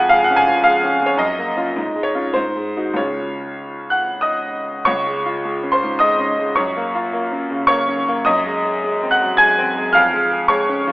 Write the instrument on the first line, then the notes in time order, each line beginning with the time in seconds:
grand piano
Already playing: F2 G#3 F4 F#5 G#5
0.09 G#3 F5
0.24 F#5
0.30 C#4
0.36 G#5
0.47 F3
0.64 G#3 F5
0.84 C#4
1.02 G#3
1.06 C#5
1.17 F#2 D#5
1.39 A#3
1.57 C#4 F4
1.76 G#2
1.96 G#3
2.03 C#5
2.15 C#4 F4
2.34 G#2 C5
2.56 G#3
2.77 D#4 F#4
2.94 C#2 G#3 C#4 F4 C#5
3.90 F#5 F#6
4.21 D#5 D#6
4.85 C#2 C#5 C#6
5.07 G#3
5.26 F4
5.45 G#3
5.63 C#4
5.72 C5 C6
5.83 G#2
5.99 G#3 D#5 D#6
6.19 C#4
6.39 G#3
6.56 F#2 C#5 C#6
6.77 A#3
6.95 F4
7.13 A#3
7.32 C#4
7.51 C#3
7.67 A#3 C#5 C#6
7.88 C#4
8.08 A#3
8.25 F#2 D#5 D#6
8.46 G#3
8.65 G#4
8.84 G#3
9.03 C4
9.11 F#5 F#6
9.22 F#3
9.37 G#3 G#5 G#6
9.58 C4
9.77 G#3
9.93 F2 F5 F6
10.14 G#3
10.32 G#4
10.48 G#3 C#5 C#6
10.69 C#4
10.87 F3